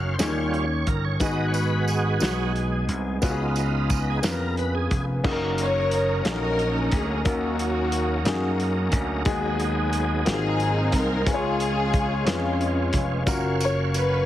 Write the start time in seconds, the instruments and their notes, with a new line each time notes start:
Already playing: slap bass F#1, tonewheel organ F#3 C#4 F5, upright piano C#4 D#4 F#4 A#4
0.14 tonewheel organ C5
0.19 slap bass D#2, upright piano D#3 C#4 D#4 G4 G#4, tonewheel organ G3 C#4 C#5, snare, closed hi-hat, tambourine
0.23 tonewheel organ F4
0.27 upright piano A#4
0.54 tonewheel organ C#5, closed hi-hat
0.87 slap bass G1, tonewheel organ A#4, kick, closed hi-hat
1.05 tonewheel organ C#5
1.20 slap bass G#1, upright piano G#2 B3 D#4 F#4 G#4, tonewheel organ G#3 B3 F#4 D#5, kick, closed hi-hat, tambourine
1.48 tonewheel organ C#5
1.54 tonewheel organ B4, closed hi-hat, tambourine
1.88 tonewheel organ G#4, closed hi-hat, tambourine
2.20 slap bass B1, tonewheel organ F#3 B3 F#4, upright piano B3 D#4 F#4 B4, snare, closed hi-hat, tambourine
2.56 closed hi-hat
2.88 slap bass C2, closed hi-hat
3.22 slap bass C#2, upright piano C#3 B3 C#4 F4 F#4, tonewheel organ B3 D#4 F4, kick, closed hi-hat, tambourine
3.30 upright piano G#4
3.56 closed hi-hat, tambourine
3.90 tonewheel organ F4, kick, closed hi-hat, tambourine
4.10 tonewheel organ G#4
4.22 slap bass F2, upright piano B3 C#4 F4 A#4, tonewheel organ A#4, snare, closed hi-hat, tambourine
4.31 upright piano B4
4.57 tonewheel organ B4, closed hi-hat
4.75 tonewheel organ G#4
4.91 slap bass F1, kick, closed hi-hat
5.24 slap bass F#1, tonewheel organ F#3 A#3 C#4 D#4 A4, upright piano A#3 C#4 D#4 F#4 G#4, kick, crash
5.32 upright piano A#4, tonewheel organ A#4
5.58 string section A#4, closed hi-hat
5.62 string section C#5
5.91 closed hi-hat
6.24 slap bass A#1, upright piano A#3 C#4 D#4 F#4 A4, string section C#4 D#4 A#4, snare, closed hi-hat
6.32 upright piano A#4
6.59 closed hi-hat
6.92 slap bass D2, string section G#4, kick, closed hi-hat
7.25 slap bass D#2, upright piano D#3 A#3 C#4 D#4 F#4 A#4, tonewheel organ F3 A#3 C#4 D#4 A#4, string section A#3 C#4 F#4, kick, closed hi-hat
7.33 tonewheel organ F#3
7.59 closed hi-hat
7.92 closed hi-hat
8.25 slap bass F#2, upright piano A#3 C#4 D#4 F#4 G#4, snare, closed hi-hat
8.60 closed hi-hat
8.92 slap bass D2, kick, closed hi-hat
9.25 slap bass D#2, upright piano D#3 G#3 B3 D#4 F#4 G#4, tonewheel organ F#3 G#3 B3 G#4, kick, closed hi-hat
9.60 closed hi-hat
9.93 closed hi-hat
10.25 slap bass G#1, upright piano G#2 A#3 C4 F4 F#4 G4, tonewheel organ F#3 A#3 C4 G#4 F5, string section C4 D#4 G#4, snare, closed hi-hat
10.33 upright piano G#4
10.60 closed hi-hat
10.92 slap bass C2, string section A#4, kick, closed hi-hat
11.26 slap bass C#2, upright piano C#3 G#3 C#4 F4 G#4 B4, tonewheel organ G#3 C#4 F4, string section C#4 F4 G#4, kick, closed hi-hat
11.34 upright piano C#5
11.60 closed hi-hat
11.93 kick, closed hi-hat
12.25 slap bass F2, upright piano G#3 C#4 F4 G#4 B4, string section C#4 F4, snare, closed hi-hat
12.29 string section G#3
12.61 closed hi-hat
12.93 slap bass F1, kick, closed hi-hat
13.26 slap bass F#1, tonewheel organ F#3 C#4 C#5 F5, upright piano A#3 C#4 F4 F#4 A#4, kick, closed hi-hat, tambourine
13.60 string section C#5, closed hi-hat, tambourine
13.94 string section B4, closed hi-hat, tambourine